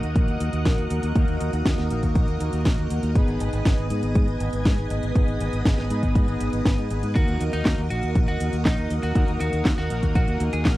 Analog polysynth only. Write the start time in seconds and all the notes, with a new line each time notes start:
Already playing: A#3 D#4 F#4 A#4
1.16 A#3 D#4 F#4 A#4
1.90 A#3 D#4 F#4 A#4
3.15 B3 D#4 G#4 B4
3.90 B3 D#4 G#4 B4
5.15 B3 D#4 G#4 B4
5.90 B3 D#4 G#4 B4
6.90 B3 D#4 G#4 B4
7.16 A#3 D#4 F#4 A#4
7.91 A#3 D#4 F#4 A#4
9.15 A#3 D#4 F#4 A#4
9.90 A#3 D#4 F#4 A#4